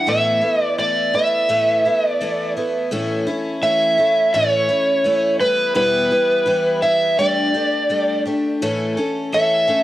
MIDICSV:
0, 0, Header, 1, 3, 480
1, 0, Start_track
1, 0, Tempo, 712589
1, 43, Time_signature, 4, 2, 24, 8
1, 6624, End_track
2, 0, Start_track
2, 0, Title_t, "Electric slide guitar"
2, 0, Program_c, 0, 29
2, 59, Note_on_c, 0, 76, 79
2, 423, Note_off_c, 0, 76, 0
2, 423, Note_on_c, 0, 74, 79
2, 532, Note_off_c, 0, 74, 0
2, 535, Note_on_c, 0, 74, 91
2, 773, Note_on_c, 0, 76, 78
2, 775, Note_off_c, 0, 74, 0
2, 1393, Note_off_c, 0, 76, 0
2, 1393, Note_on_c, 0, 74, 78
2, 1700, Note_off_c, 0, 74, 0
2, 2445, Note_on_c, 0, 76, 102
2, 2926, Note_on_c, 0, 73, 89
2, 2937, Note_off_c, 0, 76, 0
2, 3617, Note_off_c, 0, 73, 0
2, 3641, Note_on_c, 0, 71, 82
2, 3878, Note_off_c, 0, 71, 0
2, 3886, Note_on_c, 0, 71, 83
2, 4578, Note_off_c, 0, 71, 0
2, 4596, Note_on_c, 0, 76, 88
2, 4823, Note_off_c, 0, 76, 0
2, 4842, Note_on_c, 0, 74, 77
2, 5537, Note_off_c, 0, 74, 0
2, 6294, Note_on_c, 0, 76, 105
2, 6624, Note_off_c, 0, 76, 0
2, 6624, End_track
3, 0, Start_track
3, 0, Title_t, "Twelve-string acoustic guitar"
3, 0, Program_c, 1, 25
3, 43, Note_on_c, 1, 45, 70
3, 45, Note_on_c, 1, 52, 73
3, 48, Note_on_c, 1, 57, 72
3, 52, Note_on_c, 1, 59, 76
3, 54, Note_on_c, 1, 64, 78
3, 270, Note_off_c, 1, 64, 0
3, 278, Note_off_c, 1, 59, 0
3, 278, Note_on_c, 1, 64, 49
3, 283, Note_off_c, 1, 45, 0
3, 284, Note_off_c, 1, 52, 0
3, 284, Note_off_c, 1, 57, 0
3, 286, Note_on_c, 1, 59, 43
3, 292, Note_on_c, 1, 57, 41
3, 520, Note_off_c, 1, 64, 0
3, 521, Note_off_c, 1, 57, 0
3, 524, Note_off_c, 1, 59, 0
3, 527, Note_on_c, 1, 52, 60
3, 529, Note_on_c, 1, 57, 57
3, 533, Note_on_c, 1, 59, 57
3, 535, Note_on_c, 1, 64, 70
3, 756, Note_off_c, 1, 64, 0
3, 761, Note_off_c, 1, 59, 0
3, 764, Note_off_c, 1, 52, 0
3, 764, Note_on_c, 1, 64, 57
3, 766, Note_off_c, 1, 57, 0
3, 769, Note_on_c, 1, 59, 54
3, 776, Note_on_c, 1, 57, 50
3, 995, Note_off_c, 1, 57, 0
3, 999, Note_off_c, 1, 59, 0
3, 999, Note_on_c, 1, 45, 69
3, 1001, Note_off_c, 1, 64, 0
3, 1002, Note_on_c, 1, 52, 71
3, 1003, Note_on_c, 1, 57, 72
3, 1007, Note_on_c, 1, 59, 79
3, 1009, Note_on_c, 1, 64, 76
3, 1237, Note_off_c, 1, 64, 0
3, 1241, Note_off_c, 1, 45, 0
3, 1242, Note_off_c, 1, 52, 0
3, 1243, Note_off_c, 1, 57, 0
3, 1243, Note_off_c, 1, 59, 0
3, 1245, Note_on_c, 1, 64, 50
3, 1251, Note_on_c, 1, 59, 48
3, 1257, Note_on_c, 1, 57, 43
3, 1482, Note_off_c, 1, 57, 0
3, 1484, Note_off_c, 1, 59, 0
3, 1484, Note_off_c, 1, 64, 0
3, 1485, Note_on_c, 1, 52, 64
3, 1490, Note_on_c, 1, 57, 75
3, 1492, Note_on_c, 1, 59, 65
3, 1500, Note_on_c, 1, 64, 70
3, 1720, Note_off_c, 1, 64, 0
3, 1723, Note_off_c, 1, 52, 0
3, 1725, Note_off_c, 1, 59, 0
3, 1726, Note_off_c, 1, 57, 0
3, 1728, Note_on_c, 1, 64, 54
3, 1734, Note_on_c, 1, 59, 53
3, 1738, Note_on_c, 1, 57, 46
3, 1959, Note_off_c, 1, 57, 0
3, 1960, Note_on_c, 1, 45, 83
3, 1962, Note_off_c, 1, 64, 0
3, 1965, Note_on_c, 1, 52, 82
3, 1967, Note_off_c, 1, 59, 0
3, 1967, Note_on_c, 1, 57, 91
3, 1970, Note_on_c, 1, 61, 86
3, 1970, Note_on_c, 1, 64, 102
3, 2192, Note_off_c, 1, 64, 0
3, 2200, Note_on_c, 1, 64, 69
3, 2201, Note_off_c, 1, 45, 0
3, 2201, Note_off_c, 1, 61, 0
3, 2202, Note_off_c, 1, 57, 0
3, 2203, Note_off_c, 1, 52, 0
3, 2209, Note_on_c, 1, 61, 58
3, 2210, Note_on_c, 1, 57, 47
3, 2437, Note_off_c, 1, 57, 0
3, 2441, Note_off_c, 1, 61, 0
3, 2441, Note_off_c, 1, 64, 0
3, 2441, Note_on_c, 1, 52, 66
3, 2445, Note_on_c, 1, 57, 65
3, 2449, Note_on_c, 1, 61, 71
3, 2454, Note_on_c, 1, 64, 63
3, 2673, Note_off_c, 1, 64, 0
3, 2681, Note_off_c, 1, 52, 0
3, 2681, Note_off_c, 1, 61, 0
3, 2681, Note_on_c, 1, 64, 52
3, 2683, Note_off_c, 1, 57, 0
3, 2689, Note_on_c, 1, 61, 52
3, 2694, Note_on_c, 1, 57, 43
3, 2916, Note_off_c, 1, 57, 0
3, 2918, Note_off_c, 1, 61, 0
3, 2921, Note_off_c, 1, 64, 0
3, 2922, Note_on_c, 1, 45, 67
3, 2922, Note_on_c, 1, 52, 74
3, 2924, Note_on_c, 1, 57, 72
3, 2926, Note_on_c, 1, 61, 67
3, 2930, Note_on_c, 1, 64, 84
3, 3149, Note_off_c, 1, 64, 0
3, 3158, Note_on_c, 1, 64, 60
3, 3159, Note_off_c, 1, 61, 0
3, 3162, Note_off_c, 1, 45, 0
3, 3162, Note_off_c, 1, 52, 0
3, 3163, Note_off_c, 1, 57, 0
3, 3167, Note_on_c, 1, 61, 52
3, 3172, Note_on_c, 1, 57, 44
3, 3396, Note_off_c, 1, 57, 0
3, 3397, Note_off_c, 1, 61, 0
3, 3397, Note_on_c, 1, 52, 57
3, 3399, Note_off_c, 1, 64, 0
3, 3405, Note_on_c, 1, 57, 62
3, 3406, Note_on_c, 1, 61, 66
3, 3412, Note_on_c, 1, 64, 62
3, 3630, Note_off_c, 1, 64, 0
3, 3638, Note_on_c, 1, 64, 48
3, 3639, Note_off_c, 1, 52, 0
3, 3639, Note_off_c, 1, 61, 0
3, 3642, Note_on_c, 1, 59, 54
3, 3643, Note_off_c, 1, 57, 0
3, 3645, Note_on_c, 1, 55, 47
3, 3650, Note_on_c, 1, 52, 43
3, 3867, Note_off_c, 1, 52, 0
3, 3867, Note_off_c, 1, 55, 0
3, 3869, Note_off_c, 1, 59, 0
3, 3870, Note_off_c, 1, 64, 0
3, 3870, Note_on_c, 1, 40, 69
3, 3873, Note_on_c, 1, 47, 78
3, 3875, Note_on_c, 1, 55, 76
3, 3876, Note_on_c, 1, 52, 73
3, 3877, Note_on_c, 1, 59, 90
3, 3878, Note_on_c, 1, 64, 93
3, 4106, Note_off_c, 1, 64, 0
3, 4113, Note_off_c, 1, 59, 0
3, 4114, Note_off_c, 1, 55, 0
3, 4114, Note_on_c, 1, 64, 54
3, 4116, Note_off_c, 1, 40, 0
3, 4117, Note_off_c, 1, 47, 0
3, 4119, Note_off_c, 1, 52, 0
3, 4121, Note_on_c, 1, 59, 50
3, 4122, Note_on_c, 1, 55, 49
3, 4129, Note_on_c, 1, 52, 44
3, 4341, Note_off_c, 1, 52, 0
3, 4348, Note_off_c, 1, 55, 0
3, 4349, Note_on_c, 1, 52, 69
3, 4351, Note_off_c, 1, 59, 0
3, 4353, Note_off_c, 1, 64, 0
3, 4356, Note_on_c, 1, 55, 64
3, 4359, Note_on_c, 1, 59, 68
3, 4361, Note_on_c, 1, 64, 64
3, 4586, Note_off_c, 1, 64, 0
3, 4592, Note_off_c, 1, 59, 0
3, 4594, Note_on_c, 1, 64, 63
3, 4595, Note_off_c, 1, 55, 0
3, 4596, Note_off_c, 1, 52, 0
3, 4601, Note_on_c, 1, 59, 51
3, 4603, Note_on_c, 1, 55, 48
3, 4606, Note_on_c, 1, 52, 49
3, 4830, Note_off_c, 1, 55, 0
3, 4835, Note_off_c, 1, 52, 0
3, 4838, Note_on_c, 1, 55, 71
3, 4839, Note_off_c, 1, 64, 0
3, 4842, Note_off_c, 1, 59, 0
3, 4843, Note_on_c, 1, 57, 79
3, 4848, Note_on_c, 1, 62, 80
3, 4852, Note_on_c, 1, 67, 86
3, 5072, Note_off_c, 1, 67, 0
3, 5074, Note_off_c, 1, 62, 0
3, 5080, Note_on_c, 1, 67, 59
3, 5081, Note_off_c, 1, 55, 0
3, 5082, Note_on_c, 1, 62, 51
3, 5083, Note_off_c, 1, 57, 0
3, 5091, Note_on_c, 1, 57, 43
3, 5312, Note_off_c, 1, 62, 0
3, 5313, Note_off_c, 1, 57, 0
3, 5316, Note_on_c, 1, 55, 54
3, 5319, Note_off_c, 1, 67, 0
3, 5321, Note_on_c, 1, 57, 57
3, 5321, Note_on_c, 1, 62, 60
3, 5327, Note_on_c, 1, 67, 60
3, 5552, Note_off_c, 1, 67, 0
3, 5559, Note_off_c, 1, 62, 0
3, 5560, Note_off_c, 1, 55, 0
3, 5560, Note_on_c, 1, 67, 53
3, 5563, Note_off_c, 1, 57, 0
3, 5568, Note_on_c, 1, 62, 56
3, 5572, Note_on_c, 1, 57, 55
3, 5800, Note_off_c, 1, 57, 0
3, 5803, Note_off_c, 1, 67, 0
3, 5806, Note_off_c, 1, 62, 0
3, 5806, Note_on_c, 1, 45, 85
3, 5808, Note_on_c, 1, 52, 96
3, 5808, Note_on_c, 1, 57, 88
3, 5808, Note_on_c, 1, 61, 96
3, 5812, Note_on_c, 1, 69, 93
3, 6035, Note_off_c, 1, 69, 0
3, 6041, Note_off_c, 1, 61, 0
3, 6043, Note_on_c, 1, 69, 65
3, 6046, Note_off_c, 1, 45, 0
3, 6047, Note_off_c, 1, 52, 0
3, 6047, Note_off_c, 1, 57, 0
3, 6049, Note_on_c, 1, 61, 55
3, 6057, Note_on_c, 1, 57, 50
3, 6280, Note_off_c, 1, 57, 0
3, 6281, Note_off_c, 1, 61, 0
3, 6281, Note_on_c, 1, 52, 61
3, 6285, Note_off_c, 1, 69, 0
3, 6288, Note_on_c, 1, 57, 70
3, 6289, Note_on_c, 1, 61, 72
3, 6293, Note_on_c, 1, 69, 67
3, 6509, Note_off_c, 1, 69, 0
3, 6514, Note_off_c, 1, 61, 0
3, 6517, Note_on_c, 1, 69, 61
3, 6521, Note_off_c, 1, 57, 0
3, 6522, Note_on_c, 1, 61, 52
3, 6524, Note_off_c, 1, 52, 0
3, 6529, Note_on_c, 1, 57, 44
3, 6624, Note_off_c, 1, 57, 0
3, 6624, Note_off_c, 1, 61, 0
3, 6624, Note_off_c, 1, 69, 0
3, 6624, End_track
0, 0, End_of_file